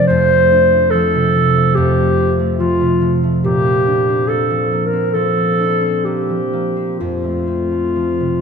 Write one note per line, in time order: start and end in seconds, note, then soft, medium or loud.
0.00 0.14 C3 soft
0.00 0.93 F3 soft
0.00 0.30 A3 soft
0.00 0.51 D4 soft
0.07 1.76 F2 medium
0.07 0.92 C5 medium
0.31 0.71 A3 soft
0.52 1.79 D4 soft
0.72 1.54 A3 soft
0.90 1.35 F3 soft
0.90 1.77 A4 medium
1.15 1.79 C3 soft
1.36 2.59 F3 soft
1.56 1.96 A3 soft
1.75 3.48 F2 medium
1.75 2.41 G4 medium
1.97 2.38 A3 soft
2.18 3.64 C4 soft
2.39 3.22 A3 soft
2.58 3.00 F3 soft
2.58 3.15 F4 medium
2.81 3.48 C3 soft
3.01 4.49 F3 soft
3.23 3.48 A3 soft
3.44 7.04 A#2 medium
3.44 4.30 G4 medium
3.66 4.07 C4 soft
3.87 5.58 D4 soft
4.08 4.92 C4 soft
4.28 4.71 A#3 soft
4.28 4.88 A4 medium
4.50 5.13 F3 soft
4.72 6.05 A#3 soft
4.86 5.15 A#4 medium
4.93 5.35 C4 soft
5.14 6.28 F3 soft
5.14 6.06 A4 medium
5.37 5.81 C4 soft
5.59 7.04 D4 soft
5.82 6.75 C4 soft
6.05 6.52 A#3 soft
6.05 6.99 G4 medium
6.30 7.94 F3 soft
6.53 7.04 A#3 soft
6.76 7.46 C4 soft
6.99 8.41 F2 soft
6.99 8.41 F4 medium
7.24 7.70 A3 soft
7.47 8.41 C4 soft
7.71 8.41 A3 soft
7.96 8.41 F3 soft
8.20 8.41 C3 soft